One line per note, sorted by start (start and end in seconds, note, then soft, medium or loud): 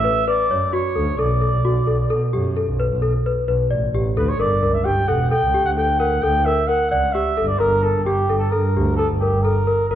0.00 0.27 E5 medium
0.04 0.20 B4 medium
0.28 0.43 B4 medium
0.28 0.75 D5 medium
0.50 0.69 F#2 medium
0.50 0.66 C#5 medium
0.73 0.88 F#4 medium
0.73 1.19 C#5 medium
0.96 1.15 D2 medium
0.96 1.11 A4 medium
1.18 1.38 B1 medium
1.18 1.34 A4 medium
1.18 2.10 D5 medium
1.41 1.57 A4 medium
1.54 1.63 B1 medium
1.65 1.84 B1 medium
1.65 1.80 F#4 medium
1.87 2.07 B1 medium
1.87 2.03 A4 medium
2.10 2.20 B2 medium
2.10 2.26 A4 medium
2.33 2.53 F#2 medium
2.33 2.49 G4 medium
2.57 2.72 A4 medium
2.68 2.77 B1 medium
2.80 2.95 B4 medium
2.91 3.10 B1 medium
3.02 3.18 A4 medium
3.26 3.41 B4 medium
3.48 3.58 B1 medium
3.48 3.63 B4 medium
3.71 3.81 A1 medium
3.71 3.86 D5 medium
3.94 4.03 A1 medium
3.94 4.10 G4 medium
4.16 4.36 D2 medium
4.16 4.32 A4 medium
4.16 4.30 B4 medium
4.29 4.39 C#5 medium
4.39 4.49 G1 medium
4.39 4.55 A#4 medium
4.39 4.75 D5 medium
4.62 4.72 C#2 medium
4.62 4.78 A#4 medium
4.74 4.86 E5 medium
4.85 4.95 G1 medium
4.85 5.01 G4 medium
4.85 5.09 G5 medium
4.98 5.07 G2 medium
5.08 5.38 E1 medium
5.08 5.24 A4 medium
5.08 5.30 F#5 medium
5.30 5.47 A4 medium
5.30 5.63 G5 medium
5.43 5.62 C#2 medium
5.54 5.70 G4 medium
5.65 6.14 D2 medium
5.65 5.71 F#5 medium
5.77 5.93 A4 medium
5.77 6.00 G5 medium
5.99 6.15 A#4 medium
5.99 6.24 F#5 medium
6.22 6.42 D2 medium
6.22 6.39 A4 medium
6.22 6.47 G5 medium
6.45 6.62 A#4 medium
6.45 6.69 E5 medium
6.67 6.84 A#4 medium
6.67 6.90 F#5 medium
6.90 7.11 C#2 medium
6.90 7.07 D5 medium
6.90 7.14 F#5 medium
7.13 7.30 G4 medium
7.13 7.49 E5 medium
7.37 7.58 G1 medium
7.37 7.53 A4 medium
7.47 7.60 D5 medium
7.59 7.80 G1 medium
7.59 7.84 A#4 medium
7.59 7.76 A#4 medium
7.83 8.04 A4 medium
7.83 7.99 A#4 medium
7.96 8.05 G1 medium
8.04 8.26 G1 medium
8.04 8.37 G4 medium
8.04 8.22 G4 medium
8.30 8.49 G1 medium
8.30 8.45 A4 medium
8.39 8.51 A4 medium
8.50 8.68 A4 medium
8.50 8.96 A#4 medium
8.54 8.63 G2 medium
8.77 8.95 D2 medium
8.77 8.92 G4 medium
8.97 9.07 A4 medium
8.97 9.14 A4 medium
9.11 9.20 G1 medium
9.19 9.44 G4 medium
9.19 9.37 A#4 medium
9.34 9.53 G1 medium
9.42 9.60 A4 medium
9.42 9.88 A#4 medium
9.67 9.83 A#4 medium
9.89 9.95 G1 medium
9.89 9.95 A#4 medium